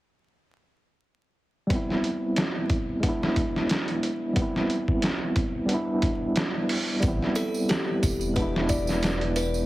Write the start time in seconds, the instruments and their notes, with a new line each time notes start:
1.67 tine electric piano G3 B3, kick, closed hi-hat
1.72 tine electric piano C4 E4
1.90 snare
2.04 closed hi-hat
2.36 snare, closed hi-hat
2.70 kick, closed hi-hat
3.00 tine electric piano G#3 B3, kick, closed hi-hat
3.06 tine electric piano D4 E4
3.23 snare
3.36 kick, closed hi-hat
3.56 snare
3.69 snare, closed hi-hat
3.88 closed hi-hat
4.03 closed hi-hat
4.33 tine electric piano G3 B3, kick, closed hi-hat
4.39 tine electric piano C4 E4
4.56 snare
4.70 closed hi-hat
4.88 kick
5.02 snare, closed hi-hat
5.36 kick, closed hi-hat
5.66 tine electric piano G3 B3, closed hi-hat
5.71 tine electric piano D4 E4
6.02 kick, closed hi-hat
6.36 snare, closed hi-hat
6.69 open hi-hat
7.00 sub bass A1, tine electric piano G3 B3, kick, closed hi-hat, tambourine
7.05 tine electric piano C4 E4
7.22 snare
7.35 music box A4, closed hi-hat, tambourine, triangle
7.54 tambourine
7.69 music box G4, snare, closed hi-hat, tambourine
8.03 sub bass E1, kick, closed hi-hat, tambourine
8.21 tambourine
8.34 tine electric piano G#3 B3, music box B4, kick, closed hi-hat, tambourine
8.39 tine electric piano D4 E4
8.56 snare
8.69 music box D5, kick, closed hi-hat, tambourine
8.87 snare, tambourine
9.02 snare, closed hi-hat, tambourine
9.21 closed hi-hat
9.36 music box B4, closed hi-hat, tambourine
9.54 tambourine